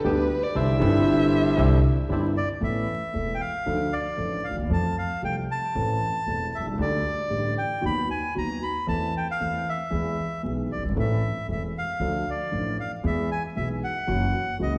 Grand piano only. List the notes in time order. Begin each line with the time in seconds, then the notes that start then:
0.04 D2 D3 G3 B3 G4
0.55 C2 C3 D3 G3 C4 E4
0.78 G1 G2 D3 G3 C4 E4
1.56 C2 C3 D3 G3 C4 E4
2.09 G1 G2 D3 G3 C4 E4
2.60 A1 A2 E3 A3 B3 A4
3.13 E1 E2 E3 A3 B3 A4
3.66 D2 D3 F3 A3 D4 A4
4.17 A1 A2 F3 A3 D4 A4
4.49 D2
4.57 D#2
4.63 E2
4.70 F2 F3 A3 C4 A4
5.22 C2 C3 F3 A3 C4 A4
5.75 A1 A2 E3 A3 C4 A4
6.27 E1 E2 E3 A3 C4 A4
6.60 B1
6.66 C2
6.73 C#2
6.78 D2 D3 G3 A3 G4
7.30 A1 A2 D3 G3 A3 G4
7.81 D#2 D#3 F#3 B3 F#4
8.35 D#2 D#3 F#3 B3 F#4
8.86 E2 E3 A3 C4 A4
9.41 E2 E3 A3 C4 A4
9.90 E2 E3 G#3 B3 G#4
10.43 B1 B2 E3 G#3 B3 G#4
10.76 F#1
10.83 G1
10.89 G#1
10.96 A1 A2 E3 A3 C4 A4
11.49 E1 E2 E3 A3 C4 A4
12.00 D2 D3 F3 A3 D4 A4
12.51 A1 A2 F3 A3 D4 A4
13.03 E2 E3 G#3 B3 G#4
13.55 B1 B2 E3 G#3 B3 G#4
14.07 F#2 E3 F#3 A#3 C#4 F#4
14.59 C#2 C#3 E3 A#3 C#4 F#4